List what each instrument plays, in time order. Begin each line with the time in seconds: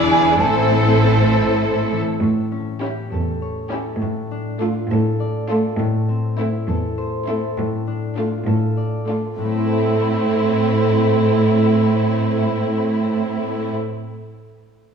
Already playing: double bass section E1, cello section E2, harp E3 B3 D4, viola section D4 E4, violin section G#4 D5
0.11 harp E4 G#4, music box G#5
0.40 double bass section A1, harp A2, cello section A2, viola section C4 E4, violin section A4 C5, music box A5
0.71 harp E4
1.01 harp F4
1.31 harp E4
1.62 harp C4
1.92 harp E3
2.22 harp A2, cello section A2
2.52 harp C#4
2.81 viola section C#4, violin section E4 G4, harp G4
3.12 cello section E2, harp A4
3.42 harp C#5
3.70 viola section C#4, violin section E4 G4, harp A4
4.01 cello section A2, harp A2
4.31 harp D4
4.61 viola section A3, violin section D4 F4, harp F4
4.90 cello section A2, harp A4
5.20 harp D5
5.49 viola section A3, violin section D4 F4, harp A4
5.79 harp A2, cello section A2
6.09 harp C4
6.38 viola section A3, violin section C4 E4, harp E4
6.68 cello section E2, harp A4
6.98 harp C5
7.27 viola section A3, violin section C4 E4, harp A4
7.57 harp A2, cello section A2
7.87 harp D4
8.16 viola section A3, violin section D4 F4, harp F4
8.47 cello section A2, harp A4
8.77 harp D5
9.07 viola section A3, violin section D4 F4, harp A4
9.37 harp A2, cello section A2, viola section A3, violin section C4 E4
9.45 harp A3
9.52 harp C4
9.59 harp E4
9.66 harp A4
9.73 harp E5